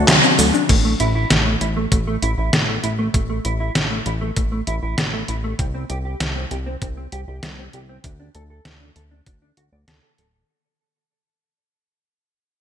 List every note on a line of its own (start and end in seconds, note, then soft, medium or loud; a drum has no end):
0.00 0.65 C3 medium
0.00 0.67 F#3 medium
0.00 0.67 A3 medium
0.00 0.67 D4 medium
0.00 0.67 F#4 medium
0.08 0.21 D2 medium
0.08 0.22 F#3 medium
0.08 snare loud
0.08 clap loud
0.08 closed hi-hat loud
0.08 cabasa soft
0.23 0.32 C4 loud
0.23 0.31 D4 medium
0.23 cabasa soft
0.39 0.52 D2 medium
0.39 0.48 F#3 medium
0.39 0.43 A4 medium
0.39 open hi-hat medium
0.39 cabasa medium
0.54 0.62 D4 loud
0.54 0.63 D4 medium
0.54 cabasa soft
0.69 0.95 A1 loud
0.69 0.74 A3 medium
0.69 kick loud
0.69 closed hi-hat loud
0.69 crash medium
0.85 0.92 A3 medium
1.00 1.26 A1 loud
1.00 1.08 E4 loud
1.00 closed hi-hat medium
1.15 1.27 E4 medium
1.30 1.56 A1 loud
1.30 snare loud
1.30 closed hi-hat medium
1.46 1.53 A3 medium
1.61 1.87 A1 medium
1.61 1.66 E4 medium
1.61 closed hi-hat medium
1.77 1.84 A3 loud
1.92 2.17 A1 medium
1.92 1.96 A3 medium
1.92 kick loud
1.92 closed hi-hat loud
2.07 2.15 A3 medium
2.22 2.35 A1 medium
2.22 2.30 E4 loud
2.22 closed hi-hat medium
2.38 2.51 A1 medium
2.38 2.49 E4 medium
2.53 2.79 A1 loud
2.53 snare loud
2.53 closed hi-hat loud
2.68 2.76 A3 medium
2.83 3.09 A1 medium
2.83 2.88 E4 medium
2.83 closed hi-hat medium
2.99 3.06 A3 loud
3.14 3.40 A1 loud
3.14 3.19 A3 medium
3.14 kick loud
3.14 closed hi-hat loud
3.30 3.37 A3 medium
3.45 3.70 A1 loud
3.45 3.52 E4 loud
3.45 closed hi-hat medium
3.60 3.72 E4 medium
3.75 4.01 A1 loud
3.75 snare loud
3.75 closed hi-hat medium
3.91 3.98 A3 medium
4.06 4.32 A1 medium
4.06 4.11 E4 medium
4.06 closed hi-hat medium
4.21 4.29 A3 loud
4.36 4.62 A1 medium
4.36 4.41 A3 medium
4.36 kick loud
4.36 closed hi-hat loud
4.52 4.60 A3 medium
4.67 4.80 A1 medium
4.67 4.75 E4 loud
4.67 closed hi-hat medium
4.83 4.95 A1 medium
4.83 4.94 E4 medium
4.98 5.24 A1 loud
4.98 snare loud
4.98 closed hi-hat loud
5.13 5.21 A3 medium
5.28 5.54 A1 medium
5.28 5.33 E4 medium
5.28 closed hi-hat medium
5.44 5.51 A3 medium
5.59 5.85 C2 loud
5.59 5.64 C4 medium
5.59 kick loud
5.59 closed hi-hat medium
5.74 5.82 C4 medium
5.90 6.16 C2 loud
5.90 5.97 G4 loud
5.90 closed hi-hat medium
6.05 6.16 G4 medium
6.20 6.46 C2 loud
6.20 snare loud
6.20 closed hi-hat medium
6.36 6.43 C4 medium
6.51 6.77 C2 medium
6.51 6.56 G4 medium
6.51 closed hi-hat medium
6.66 6.74 C4 loud
6.82 7.07 C2 medium
6.82 6.86 C4 medium
6.82 kick loud
6.82 closed hi-hat medium
6.97 7.05 C4 medium
7.12 7.25 C2 medium
7.12 7.20 G4 loud
7.12 closed hi-hat medium
7.28 7.40 C2 medium
7.28 7.39 G4 medium
7.43 7.69 C2 loud
7.43 snare loud
7.43 closed hi-hat medium
7.58 7.66 C4 medium
7.73 7.99 C2 medium
7.73 7.78 G4 medium
7.73 closed hi-hat medium
7.89 7.97 C4 medium
8.04 8.30 D2 medium
8.04 8.09 D4 medium
8.04 kick loud
8.04 closed hi-hat medium
8.20 8.27 D4 medium
8.35 8.60 D2 loud
8.35 8.42 A4 loud
8.35 closed hi-hat medium
8.50 8.62 A4 medium
8.65 8.91 D2 medium
8.65 snare loud
8.65 closed hi-hat medium
8.81 8.88 D4 medium
8.96 9.22 D2 loud
8.96 9.01 A4 medium
8.96 closed hi-hat medium
9.11 9.19 D4 loud
9.26 9.52 D2 medium
9.26 9.31 D4 medium
9.26 kick loud
9.26 closed hi-hat medium
9.42 9.49 D4 medium
9.57 9.70 D2 medium
9.57 9.62 F#4 medium
9.57 closed hi-hat medium
9.72 9.85 D2 medium
9.72 9.77 D5 medium
9.88 10.00 D2 medium
9.88 9.99 A4 medium
9.88 snare loud
9.88 closed hi-hat medium
10.03 10.11 A4 medium
10.18 10.44 D1 medium
10.18 10.26 A4 medium
10.18 closed hi-hat medium